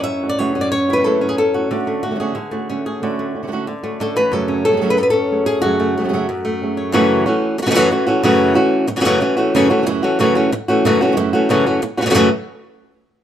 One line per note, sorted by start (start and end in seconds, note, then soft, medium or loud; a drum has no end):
0.00 0.38 F#2 medium
0.00 0.55 C#4 medium
0.00 0.38 E4 soft
0.00 0.29 E5 loud
0.06 muted nylon-string guitar stroke medium
0.23 0.38 E3 soft
0.23 0.38 A3 soft
0.23 0.38 C#4 soft
0.23 0.39 F#4 soft
0.29 0.39 D5 medium
0.38 0.55 F#2 medium
0.38 1.04 F#2 medium
0.38 0.55 C#3 medium
0.38 0.55 E3 medium
0.38 0.55 A3 medium
0.38 0.54 C#4 medium
0.38 0.53 F#4 medium
0.38 0.61 C#5 loud
0.55 0.72 E3 soft
0.55 0.72 A3 soft
0.55 1.21 C#4 medium
0.55 0.71 C#4 soft
0.55 0.71 F#4 soft
0.61 0.71 D5 medium
0.72 1.27 C#5 loud
0.72 muted nylon-string guitar stroke medium
0.89 0.95 C#3 soft
0.89 0.95 E3 soft
0.89 0.92 A3 soft
0.89 0.91 C#4 soft
0.89 0.96 C#4 soft
0.89 1.69 E4 soft
0.89 0.92 F#4 soft
0.93 0.99 C#3 soft
0.93 1.00 E3 medium
0.93 0.96 A3 soft
0.93 0.96 F#4 soft
0.93 1.04 B4 medium
0.97 1.04 C#3 soft
0.97 1.00 A3 soft
0.97 1.00 C#4 soft
0.97 1.01 F#4 medium
1.01 1.04 E3 medium
1.01 1.05 A3 medium
1.01 1.05 C#4 medium
1.01 1.05 F#4 medium
1.01 1.28 A4 loud
1.05 1.70 F#2 medium
1.05 1.21 F#2 medium
1.05 1.21 C#3 medium
1.05 1.21 E3 medium
1.05 1.21 A3 medium
1.05 1.21 C#4 medium
1.05 1.20 F#4 medium
1.21 1.37 E3 soft
1.21 1.38 A3 soft
1.21 1.74 C#4 medium
1.21 1.37 C#4 soft
1.21 1.37 F#4 soft
1.29 1.38 G#4 medium
1.38 1.71 A4 medium
1.38 muted nylon-string guitar stroke soft
1.54 1.71 E3 soft
1.54 1.70 A3 soft
1.54 1.70 C#4 soft
1.54 2.02 F#4 soft
1.54 1.70 F#4 soft
1.71 2.34 D3 medium
1.71 2.03 D3 medium
1.71 2.03 A3 medium
1.71 2.04 C#4 medium
1.71 2.03 F#4 medium
1.87 2.51 A3 medium
2.03 2.10 A3 soft
2.03 2.11 C#4 soft
2.03 2.20 F#4 medium
2.03 2.11 F#4 soft
2.11 2.14 D3 soft
2.11 2.15 A3 soft
2.11 2.15 C#4 soft
2.11 2.15 F#4 medium
2.15 2.19 D3 medium
2.15 2.19 A3 medium
2.15 2.20 C#4 medium
2.15 2.20 F#4 medium
2.20 2.36 D3 medium
2.20 2.36 A3 medium
2.20 2.36 C#4 medium
2.20 2.36 F#4 medium
2.20 2.85 G#4 medium
2.35 2.99 D3 medium
2.35 muted nylon-string guitar stroke medium
2.51 3.19 A3 medium
2.51 2.69 A3 soft
2.51 2.69 C#4 soft
2.51 2.68 F#4 soft
2.70 2.85 D3 soft
2.70 2.85 A3 soft
2.70 4.01 C#4 medium
2.70 2.85 C#4 soft
2.70 2.84 F#4 soft
2.85 3.01 A3 soft
2.85 3.02 C#4 soft
2.85 3.01 F#4 soft
2.85 3.00 G#4 medium
3.02 3.34 D3 medium
3.02 3.66 D3 medium
3.02 3.34 A3 medium
3.02 3.35 C#4 medium
3.02 3.34 F#4 medium
3.19 3.83 A3 medium
3.35 3.42 A3 soft
3.35 3.43 C#4 soft
3.35 3.43 F#4 soft
3.43 3.46 D3 soft
3.43 3.47 A3 soft
3.43 3.47 C#4 soft
3.43 3.47 F#4 soft
3.47 3.51 D3 medium
3.47 3.51 A3 medium
3.47 3.52 C#4 medium
3.47 3.52 F#4 medium
3.52 3.67 D3 medium
3.52 3.67 A3 medium
3.52 3.68 C#4 medium
3.52 3.67 F#4 medium
3.67 3.99 D3 medium
3.67 muted nylon-string guitar stroke soft
3.83 5.80 A3 medium
3.83 3.99 A3 soft
3.83 3.99 C#4 soft
3.83 3.99 F#4 soft
4.00 4.15 D3 soft
4.00 4.16 D3 medium
4.00 4.16 A3 medium
4.00 4.16 C#4 soft
4.00 4.15 F#4 soft
4.00 4.16 A4 loud
4.16 4.32 E3 medium
4.16 4.32 A3 soft
4.16 4.32 C#4 soft
4.16 4.32 F#4 soft
4.16 4.33 B4 loud
4.32 4.97 F#2 medium
4.32 4.65 F#2 medium
4.32 4.65 C#3 medium
4.32 4.65 F#3 medium
4.32 4.65 A3 medium
4.32 4.64 C#4 medium
4.32 4.64 A4 loud
4.48 5.13 C#4 medium
4.65 4.71 C#3 soft
4.65 4.68 F#3 soft
4.65 4.71 F#3 soft
4.65 4.68 A3 soft
4.65 4.72 A3 medium
4.65 4.68 C#4 soft
4.65 4.72 C#4 soft
4.65 4.68 G#4 medium
4.65 4.90 A4 loud
4.69 4.76 C#3 medium
4.69 4.76 F#3 medium
4.69 4.76 A3 medium
4.69 4.76 C#4 medium
4.69 4.73 G#4 soft
4.74 4.80 C#3 medium
4.74 4.81 F#3 medium
4.74 4.81 A3 medium
4.74 4.81 C#4 medium
4.74 4.77 G#4 medium
4.78 4.97 F#2 medium
4.78 4.97 C#3 medium
4.78 4.82 G#4 medium
4.82 4.98 F#3 medium
4.82 4.98 A3 medium
4.82 4.98 C#4 medium
4.82 4.98 G#4 medium
4.90 4.98 B4 loud
4.97 5.62 F#2 medium
4.97 5.03 A4 loud
4.97 muted nylon-string guitar stroke medium
5.03 5.10 B4 medium
5.10 5.79 C#4 medium
5.10 5.46 A4 medium
5.31 5.63 F#3 soft
5.31 5.63 A3 soft
5.31 5.63 C#4 medium
5.31 5.64 G#4 medium
5.46 5.96 G#4 medium
5.62 6.28 F#2 medium
5.62 5.95 F#2 medium
5.62 5.96 C#3 medium
5.62 5.96 F#3 medium
5.62 5.96 A3 medium
5.62 5.96 C#4 medium
5.62 6.77 F#4 loud
5.62 5.96 G#4 medium
5.80 5.96 A3 medium
5.97 6.03 C#3 soft
5.97 6.00 F#3 soft
5.97 6.03 F#3 soft
5.97 6.43 A3 soft
5.97 6.00 A3 soft
5.97 6.04 A3 medium
5.97 5.99 C#4 soft
5.97 6.04 C#4 soft
5.97 6.00 G#4 soft
6.01 6.08 C#3 medium
6.01 6.08 F#3 medium
6.01 6.08 A3 medium
6.01 6.04 G#4 medium
6.05 6.12 C#3 medium
6.05 6.13 F#3 medium
6.05 6.08 C#4 medium
6.05 6.09 G#4 medium
6.09 6.28 F#2 medium
6.09 6.12 A3 medium
6.09 6.13 C#4 medium
6.09 6.13 G#4 medium
6.14 6.28 C#3 medium
6.14 6.28 F#3 medium
6.14 6.29 A3 medium
6.14 6.29 C#4 medium
6.14 6.29 G#4 medium
6.29 6.91 F#2 medium
6.29 muted nylon-string guitar stroke medium
6.45 6.92 A3 medium
6.61 6.93 F#3 soft
6.61 6.94 A3 medium
6.61 6.93 C#4 medium
6.61 6.94 G#4 soft
6.77 6.92 C#5 soft
6.92 7.25 F#2 medium
6.92 7.26 F#2 medium
6.92 7.26 C#3 medium
6.92 7.26 E3 medium
6.92 7.26 A3 loud
6.92 7.26 A3 medium
6.92 7.26 C#4 loud
6.92 7.25 C#4 medium
6.92 7.25 F#4 medium
7.26 7.57 E3 soft
7.26 7.58 E3 soft
7.26 7.58 A3 soft
7.26 7.58 C#4 medium
7.26 7.58 F#4 medium
7.26 7.58 F#4 soft
7.59 7.65 A3 medium
7.59 muted nylon-string guitar stroke medium
7.63 7.70 C#3 medium
7.63 7.69 E3 medium
7.63 7.70 A3 medium
7.63 7.66 F#4 medium
7.67 7.70 C#4 medium
7.67 7.71 F#4 medium
7.71 7.91 F#2 medium
7.71 7.75 C#3 medium
7.71 7.74 E3 medium
7.71 7.74 A3 medium
7.71 7.75 C#4 medium
7.71 7.75 F#4 medium
7.75 7.91 C#3 medium
7.75 7.90 E3 loud
7.75 7.90 A3 medium
7.75 7.90 C#4 medium
7.75 7.91 F#4 loud
7.91 8.07 E3 medium
7.91 8.07 A3 medium
7.91 8.07 A3 soft
7.91 8.07 C#4 soft
7.91 8.06 C#4 medium
7.91 8.07 F#4 medium
7.91 8.05 F#4 medium
8.07 8.23 E3 medium
8.07 8.23 E3 soft
8.07 8.23 A3 medium
8.07 8.24 A3 soft
8.07 8.23 C#4 medium
8.07 8.24 C#4 soft
8.07 8.23 F#4 medium
8.07 8.24 F#4 soft
8.23 8.56 F#2 medium
8.23 8.56 C#3 loud
8.23 8.56 C#3 medium
8.23 8.55 E3 medium
8.23 8.56 E3 medium
8.23 8.55 A3 loud
8.23 8.57 A3 medium
8.23 8.55 C#4 loud
8.23 8.56 C#4 medium
8.23 8.54 F#4 loud
8.23 8.55 F#4 medium
8.55 8.87 E3 medium
8.55 8.89 E3 soft
8.55 8.86 A3 medium
8.55 8.89 A3 soft
8.55 8.87 C#4 medium
8.55 8.89 C#4 medium
8.55 8.87 F#4 medium
8.55 8.89 F#4 medium
8.90 muted nylon-string guitar stroke medium
8.96 8.99 C#3 medium
8.96 9.00 E3 medium
8.96 9.00 A3 medium
8.96 9.00 C#4 medium
8.96 9.01 F#4 medium
9.00 9.04 C#3 medium
9.00 9.04 E3 medium
9.00 9.05 A3 medium
9.00 9.05 C#4 medium
9.00 9.05 F#4 medium
9.05 9.21 F#2 medium
9.05 9.21 C#3 loud
9.05 9.19 E3 loud
9.05 9.20 A3 loud
9.05 9.21 C#4 loud
9.05 9.21 F#4 loud
9.21 9.37 E3 medium
9.21 9.37 A3 medium
9.21 9.38 A3 medium
9.21 9.36 C#4 medium
9.21 9.38 C#4 medium
9.21 9.36 F#4 medium
9.21 9.37 F#4 soft
9.37 9.54 E3 medium
9.37 9.55 E3 soft
9.37 9.54 A3 medium
9.37 9.54 A3 soft
9.37 9.54 C#4 medium
9.37 9.54 C#4 soft
9.37 9.53 F#4 medium
9.37 9.54 F#4 soft
9.55 9.70 F#2 medium
9.55 9.70 C#3 loud
9.55 9.70 E3 medium
9.55 9.70 A3 loud
9.55 9.69 C#4 loud
9.55 9.69 F#4 loud
9.55 muted nylon-string guitar stroke medium
9.70 9.85 E3 medium
9.70 9.86 A3 medium
9.70 9.86 C#4 medium
9.70 9.86 F#4 medium
9.78 9.81 C#3 soft
9.78 9.81 E3 medium
9.78 9.82 A3 medium
9.78 9.82 C#4 medium
9.78 9.82 F#4 medium
9.82 9.86 C#3 medium
9.82 9.86 E3 medium
9.82 9.87 A3 medium
9.82 9.87 C#4 medium
9.82 9.87 F#4 medium
9.86 10.03 F#2 medium
9.86 10.03 C#3 medium
9.86 10.03 E3 medium
9.86 10.03 A3 medium
9.86 10.03 C#4 medium
9.86 10.03 F#4 medium
9.86 muted nylon-string guitar stroke medium
10.03 10.19 E3 medium
10.03 10.19 A3 medium
10.03 10.19 C#4 medium
10.03 10.19 F#4 medium
10.03 10.19 F#4 soft
10.19 10.35 F#2 medium
10.19 10.51 F#2 medium
10.19 10.35 C#3 medium
10.19 10.51 C#3 medium
10.19 10.36 E3 medium
10.19 10.51 E3 medium
10.19 10.35 A3 medium
10.19 10.51 A3 medium
10.19 10.35 C#4 loud
10.19 10.51 C#4 medium
10.19 10.34 F#4 loud
10.19 10.51 F#4 medium
10.35 10.51 E3 medium
10.35 10.51 A3 medium
10.35 10.52 C#4 medium
10.35 10.51 F#4 medium
10.52 muted nylon-string guitar stroke medium
10.68 10.85 E3 medium
10.68 10.85 A3 medium
10.68 10.85 C#4 medium
10.68 10.84 F#4 medium
10.85 11.01 F#2 medium
10.85 11.01 C#3 loud
10.85 11.01 E3 medium
10.85 11.01 A3 loud
10.85 11.01 C#4 loud
10.85 11.00 F#4 loud
10.85 muted nylon-string guitar stroke medium
11.01 11.06 C#3 soft
11.01 11.16 E3 medium
11.01 11.06 E3 soft
11.01 11.16 A3 medium
11.01 11.07 A3 soft
11.01 11.16 C#4 medium
11.01 11.07 C#4 medium
11.01 11.16 F#4 medium
11.01 11.07 F#4 medium
11.07 11.11 C#3 medium
11.07 11.11 E3 medium
11.07 11.11 A3 medium
11.07 11.12 C#4 medium
11.07 11.12 F#4 medium
11.12 11.16 C#3 medium
11.12 11.16 E3 medium
11.12 11.16 A3 medium
11.12 11.16 C#4 medium
11.12 11.17 F#4 medium
11.17 11.33 F#2 medium
11.17 11.33 C#3 medium
11.17 11.33 E3 medium
11.17 11.33 A3 medium
11.17 11.33 C#4 medium
11.17 11.32 F#4 medium
11.17 muted nylon-string guitar stroke medium
11.33 11.49 E3 soft
11.33 11.49 A3 soft
11.33 11.49 A3 medium
11.33 11.50 C#4 medium
11.33 11.50 C#4 soft
11.33 11.49 F#4 medium
11.49 11.65 F#2 medium
11.49 11.82 F#2 medium
11.49 11.66 C#3 medium
11.49 11.82 C#3 medium
11.49 11.66 E3 medium
11.49 11.82 E3 medium
11.49 11.66 A3 medium
11.49 11.82 A3 medium
11.49 11.66 C#4 medium
11.49 11.83 C#4 medium
11.49 11.65 F#4 medium
11.49 11.83 F#4 medium
11.66 11.81 E3 soft
11.66 11.81 A3 medium
11.66 11.82 C#4 medium
11.66 11.82 F#4 medium
11.83 muted nylon-string guitar stroke medium
11.97 12.05 C#3 medium
11.97 12.01 E3 medium
11.97 12.01 A3 medium
11.97 12.01 C#4 medium
11.97 12.01 F#4 medium
12.02 12.09 C#3 medium
12.02 12.09 E3 medium
12.02 12.05 A3 medium
12.02 12.06 C#4 medium
12.02 12.06 F#4 medium
12.06 12.10 C#3 soft
12.06 12.14 C#3 medium
12.06 12.11 E3 medium
12.06 12.10 A3 medium
12.06 12.11 A3 medium
12.06 12.10 C#4 medium
12.06 12.11 C#4 medium
12.06 12.10 F#4 medium
12.06 12.11 F#4 medium
12.11 12.28 F#2 loud
12.11 12.15 C#3 medium
12.11 12.14 E3 medium
12.11 12.15 E3 medium
12.11 12.14 A3 medium
12.11 12.15 A3 medium
12.11 12.15 C#4 medium
12.11 12.16 C#4 medium
12.11 12.15 F#4 loud
12.11 12.16 F#4 medium
12.15 12.29 F#2 medium
12.15 12.28 C#3 loud
12.15 12.29 C#3 medium
12.15 12.28 E3 medium
12.15 12.29 E3 medium
12.15 12.29 A3 loud
12.15 12.29 A3 medium
12.15 12.29 C#4 medium
12.15 12.29 F#4 loud
12.15 12.29 F#4 medium